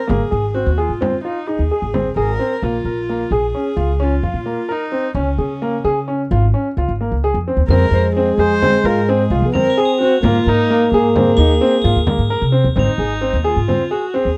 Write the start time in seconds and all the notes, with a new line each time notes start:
Already playing: A#4
0.07 G#1 A#3 G#4, frame drum
0.31 G#1 G#4
0.54 C4 F#4
0.66 D#2
0.78 F4 G#4
0.89 G#2
1.01 C4, frame drum
1.25 D#4 F4
1.47 D#4 G#4
1.59 D#2
1.71 G#4
1.82 G#1
1.94 C4, frame drum
2.16 G#1 G#4 A#4
2.39 C4
2.62 A#1 A#3 F4
2.85 A#1 A#4
3.09 A#3
3.31 A#1 G#4
3.55 C#4
3.77 C#2 F4
4.00 C#4 F4
4.23 F2 F4
4.34 A#2
4.46 A#3
4.69 D#4 A#4
4.92 C4
5.15 C#2 C#4
5.38 C#3 G#4
5.62 A#3
5.84 C#3 G#4
6.08 C#4
6.31 G#1 F4
6.54 C#4
6.77 C#2 F4
6.88 G#1
7.01 A#3
7.12 C#2
7.24 G#4
7.34 F2
7.48 C4
7.57 D#2
7.68 F2 G#3 C4 A#4 C8, frame drum
7.91 F2 C5
8.16 C4 G#4
8.38 F2 G#4 C5
8.62 C4, frame drum
8.84 G#2 F4 A#4
9.09 C4 G#4
9.30 C2 F4
9.42 F3
9.47 B3
9.54 C4 A#4 F7, frame drum
9.70 G#7
9.77 G#4
9.85 A#7
10.00 C4 F#4
10.21 G#2 A#3, frame drum
10.26 F4
10.46 G#2 D#4 A#4
10.70 A#3
10.92 G#2 G#4
11.16 C4, frame drum
11.37 D#2 D#4 G#7, frame drum
11.61 C4
11.82 G#2 F4 A#7
11.96 D#2
12.07 A#3, frame drum
12.19 G#2
12.30 A#4
12.42 C3
12.52 C4
12.64 D#2
12.76 G#1 C4 D#4 F7, frame drum
12.98 G#1 G#4
13.21 C4
13.33 D#2
13.44 F4 G#4
13.56 G#2
13.68 C4, frame drum
13.91 F#4 G#4, frame drum
14.14 C4 G#4, frame drum
14.25 D#2